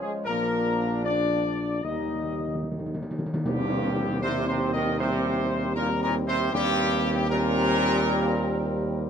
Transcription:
0.00 1.67 F3 medium
0.00 0.26 G#3 medium
0.00 0.27 C#4 medium
0.00 0.12 G#4 medium
0.25 1.80 A#1 medium
0.25 1.01 A#3 medium
0.25 1.67 D4 medium
0.25 0.99 A#4 loud
1.04 1.81 D4 medium
1.04 1.80 D5 loud
1.83 3.09 D#2 medium
1.83 1.91 D#3 soft
1.83 3.09 G3 medium
1.83 2.61 D#4 medium
1.83 3.09 D#4 medium
1.83 2.65 D#5 medium
1.93 1.98 D#3 soft
2.00 2.07 D#3 soft
2.08 2.14 D#3 soft
2.15 2.22 D#3 soft
2.24 2.31 D#3 soft
2.32 2.38 D#3 soft
2.40 2.47 D#3 soft
2.48 2.54 D#3 soft
2.55 2.62 D#3 medium
2.63 2.70 D#3 medium
2.72 2.78 D#3 medium
2.79 2.85 D#3 medium
2.86 2.93 D#3 medium
2.94 3.01 D#3 medium
3.02 3.10 D#3 medium
3.11 3.18 D#3 medium
3.19 3.25 D#3 medium
3.26 3.33 D#3 medium
3.34 3.41 D#3 medium
3.44 6.49 D#2 medium
3.44 4.18 G2 medium
3.44 4.58 D#3 medium
3.44 4.19 G3 medium
3.44 4.19 C4 medium
3.44 4.19 G4 loud
3.44 tam-tam medium
4.21 4.46 C3 medium
4.21 4.95 G3 medium
4.21 4.96 C4 medium
4.21 4.46 C5 loud
4.47 4.72 C3 medium
4.47 4.72 C5 medium
4.73 4.98 D#3 medium
4.73 4.98 D#5 loud
4.99 5.72 C3 loud
4.99 5.73 G3 medium
4.99 5.73 C4 medium
4.99 5.72 C5 loud
5.75 5.88 A#2 medium
5.75 6.49 G3 medium
5.75 6.49 C4 medium
5.75 6.00 A#4 loud
6.02 6.14 A#2 medium
6.02 6.14 A#4 loud
6.27 6.51 C3 medium
6.27 6.51 C5 loud
6.52 9.10 D#2 medium
6.52 7.25 G2 loud
6.52 7.26 G3 medium
6.52 7.25 C4 medium
6.52 7.26 G4 loud
7.28 9.10 A#2 loud
7.28 9.10 G3 loud
7.28 9.10 C4 loud
7.28 9.10 A#4 loud

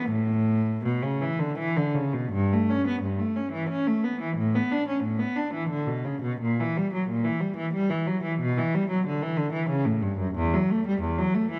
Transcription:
0.09 0.83 A2 medium
0.85 1.03 B2 medium
1.03 1.22 C#3 medium
1.22 1.40 E3 medium
1.39 1.58 D3 medium
1.58 1.77 E3 medium
1.77 1.96 D3 medium
1.94 2.15 C#3 medium
2.14 2.33 B2 medium
2.32 2.51 G2 medium
2.52 2.70 A3 medium
2.70 2.87 C#4 medium
2.88 3.04 B3 medium
3.02 3.19 G2 medium
3.19 3.36 A3 medium
3.36 3.53 C#4 medium
3.52 3.70 E3 medium
3.69 3.87 C#4 medium
3.87 4.04 A3 medium
4.04 4.21 B3 medium
4.22 4.38 E3 medium
4.37 4.53 A2 medium
4.55 4.71 B3 medium
4.72 4.88 D4 medium
4.88 5.04 C#4 medium
5.04 5.20 A2 medium
5.19 5.36 B3 medium
5.36 5.53 D4 medium
5.54 5.70 E3 medium
5.70 5.87 D3 medium
5.87 6.04 B2 medium
6.04 6.22 C#3 medium
6.22 6.39 B2 medium
6.40 6.58 A#2 medium
6.60 6.76 E3 medium
6.77 6.93 G3 medium
6.93 7.09 F#3 medium
7.09 7.25 A#2 medium
7.25 7.41 E3 medium
7.41 7.57 G3 medium
7.57 7.73 E3 medium
7.73 7.89 G3 medium
7.90 8.06 E3 medium
8.07 8.23 F#3 medium
8.24 8.39 E3 medium
8.40 8.56 B2 medium
8.58 8.73 E3 medium
8.75 8.90 G3 medium
8.90 9.05 F#3 medium
9.06 9.21 D3 medium
9.22 9.38 E3 medium
9.37 9.53 D3 medium
9.53 9.69 E3 medium
9.70 9.86 C#3 medium
9.86 10.02 A2 medium
10.02 10.19 G2 medium
10.19 10.36 F#2 medium
10.35 10.52 E2 medium
10.54 10.70 F#3 medium
10.71 10.86 A3 medium
10.87 11.02 G3 medium
11.01 11.17 E2 medium
11.18 11.34 F#3 medium
11.35 11.50 A3 medium
11.51 11.60 E3 medium

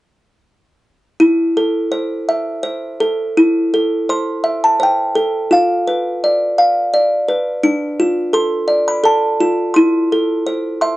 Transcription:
1.20 2.64 E4 medium
1.57 2.99 A4 medium
1.92 2.62 C5 medium
2.29 3.37 E5 medium
2.63 3.36 C5 medium
3.00 3.37 A4 medium
3.37 4.80 E4 medium
3.74 5.14 A4 medium
4.09 4.79 C5 medium
4.09 4.59 C6 medium
4.44 5.51 E5 medium
4.64 4.81 A5 medium
4.80 5.51 C5 medium
4.80 5.55 G5 medium
5.15 5.51 A4 medium
5.51 6.93 F4 medium
5.51 6.57 F5 medium
5.87 7.27 B4 medium
6.24 6.92 D5 medium
6.58 7.64 F5 medium
6.94 7.64 D5 medium
7.28 7.64 B4 medium
7.63 9.06 D4 medium
8.00 9.39 F4 medium
8.33 9.02 A4 medium
8.33 8.89 C6 medium
8.68 9.76 D5 medium
8.88 9.05 B5 medium
9.04 9.76 A4 medium
9.04 9.79 A5 medium
9.40 9.77 F4 medium
9.74 10.97 E4 medium
9.74 10.80 C6 medium
10.12 10.97 A4 medium
10.47 10.97 C5 medium
10.81 10.97 E5 medium
10.81 10.97 C6 medium

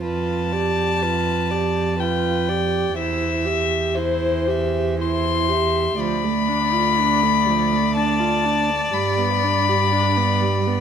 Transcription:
0.02 2.93 F2 medium
0.02 0.54 F4 soft
0.02 0.54 B4 soft
0.02 2.01 A5 medium
0.52 1.04 G4 soft
0.52 1.04 D5 soft
1.02 1.53 F4 soft
1.02 1.52 B4 soft
1.51 1.99 G4 soft
1.51 1.99 D5 soft
1.99 2.50 F4 soft
1.99 2.51 B4 soft
1.99 2.97 G5 medium
2.49 2.97 G4 soft
2.49 2.98 D5 soft
2.96 5.95 E2 medium
2.96 3.47 E4 medium
2.96 3.49 C5 medium
2.96 3.97 E5 medium
3.46 3.98 G4 soft
3.46 4.01 E5 soft
3.95 4.49 E4 medium
3.95 5.03 C5 medium
3.99 4.51 C5 medium
4.47 5.00 G4 medium
4.47 5.00 E5 soft
5.00 5.50 E4 medium
5.00 5.53 C5 soft
5.00 6.01 C6 medium
5.49 5.99 G4 soft
5.49 6.00 E5 soft
6.00 8.93 D2 medium
6.00 6.26 F3 medium
6.00 10.80 D5 medium
6.00 7.95 B5 medium
6.24 6.50 A3 soft
6.49 6.75 D4 medium
6.74 7.01 F4 soft
7.00 7.25 D4 medium
7.23 7.49 A3 soft
7.48 7.74 F3 medium
7.72 7.98 A3 soft
7.96 8.21 D4 medium
7.96 8.95 A5 medium
8.20 8.47 F4 medium
8.45 8.71 D4 medium
8.70 8.93 A3 medium
8.92 10.80 G2 medium
8.92 9.20 G3 medium
8.92 10.80 B5 medium
9.18 9.45 B3 soft
9.43 9.70 D4 soft
9.69 9.93 G4 soft
9.92 10.18 D4 medium
10.17 10.44 B3 soft
10.42 10.69 G3 medium
10.67 10.80 B3 soft

